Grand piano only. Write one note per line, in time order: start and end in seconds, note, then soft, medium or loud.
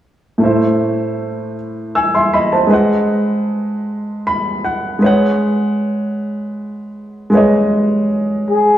0.38 2.66 A2 medium
0.38 2.67 A3 medium
0.38 2.68 E4 soft
0.44 1.55 C5 soft
0.44 1.56 E5 medium
1.95 2.13 G#5 soft
1.95 2.13 E6 soft
2.15 2.33 E5 soft
2.15 2.32 C6 soft
2.33 2.52 D#5 soft
2.33 2.51 B5 medium
2.52 2.89 C5 soft
2.52 2.88 A5 soft
2.67 4.96 G#3 medium
2.67 4.97 G#4 soft
2.67 4.97 B4 medium
2.72 4.98 D#5 medium
2.72 4.63 F#5 medium
4.27 4.62 B5 medium
4.64 5.00 F#5 medium
4.99 7.27 G#3 medium
4.99 7.28 G#4 soft
4.99 7.29 B4 medium
5.04 7.30 C#5 medium
5.04 7.31 F#5 medium
7.30 8.78 G#3 medium
7.30 8.78 G#4 soft
7.30 8.78 B4 soft
7.35 8.78 C#5 soft
7.35 8.78 D#5 medium